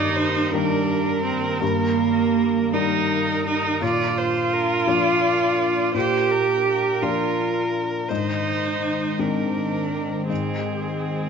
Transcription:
Already playing: G2 D#3 A#3 D#4 A#4 D5
0.16 C5
0.51 D#3 G3 A#3 D4 A#4
1.24 C4
1.60 G2 A#3
2.73 G3 A#3 D#4 A#4
3.46 D#4
3.81 A#2 A#3 D4 F4 A#4 D5
4.18 C5
4.53 A#4
4.87 F3 A#3 D4 D5
5.94 A#2 G4 C5
6.31 A#4
6.68 A#4
7.02 F3 A#3 D4 F4
8.09 G#2 D#3 G#3 D#4 C5
9.19 D#3 G#3 C4 D4 A#4
10.29 G#2 C4 G#4

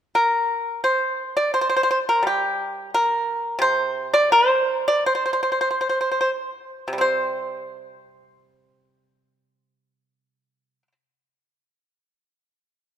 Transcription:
0.15 A#4
0.84 C5
1.37 D5
1.54 C5
1.61 C5
1.69 C5
1.76 C5
1.83 C5
1.91 C5
2.09 A#4
2.23 G3
2.27 G4
2.94 A#4
3.59 C3 C5
4.14 D5
4.32 C5
4.88 D5
5.06 C5
5.15 C5
5.26 C5
5.33 C5
5.43 C5
5.52 C5
5.61 C5
5.71 C5
5.81 C5
5.89 C5
6.01 C5
6.12 C5
6.21 C5
6.88 C3
6.93 G3
6.98 C4 C5

